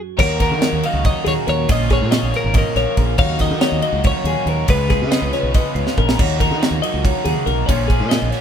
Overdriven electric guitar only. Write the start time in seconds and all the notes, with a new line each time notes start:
0.17 D#3 A#3 D#4 F#4
1.69 A#2 F3 A#3 C#4 F4
3.18 D#3 A#3 D#4
3.22 F#4
4.67 C#3 F3 G#3 C#4 F4
4.71 B4
6.17 D#3 A#3 D#4 F#4
7.67 A#2 F3 A#3 C#4 F4